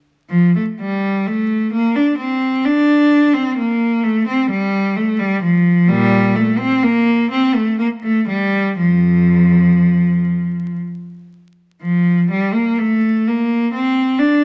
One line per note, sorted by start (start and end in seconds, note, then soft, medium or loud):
0.30 0.53 F3 medium
0.55 0.63 A3 medium
0.80 1.27 G3 medium
1.27 1.74 A3 medium
1.73 1.96 A#3 medium
1.96 2.20 D4 medium
2.18 2.64 C4 medium
2.65 3.35 D4 medium
3.34 3.58 C4 medium
3.58 4.03 A#3 medium
4.04 4.27 A3 medium
4.28 4.50 C4 medium
4.50 4.95 G3 medium
4.97 5.19 A3 medium
5.19 5.42 G3 medium
5.43 5.88 F3 medium
5.88 6.31 A#2 medium
5.88 6.35 G3 loud
6.35 6.58 A3 medium
6.58 6.82 C4 loud
6.83 7.31 A#3 loud
7.31 7.54 C4 medium
7.55 7.78 A3 medium
7.79 7.87 A#3 medium
8.03 8.27 A3 medium
8.28 8.76 G3 medium
8.78 10.25 F2 medium
8.78 10.77 F3 medium
11.82 12.27 F3 medium
12.31 12.54 G3 medium
12.53 12.78 A#3 medium
12.79 13.27 A3 medium
13.28 13.74 A#3 medium
13.73 14.19 C4 medium
14.19 14.44 D4 medium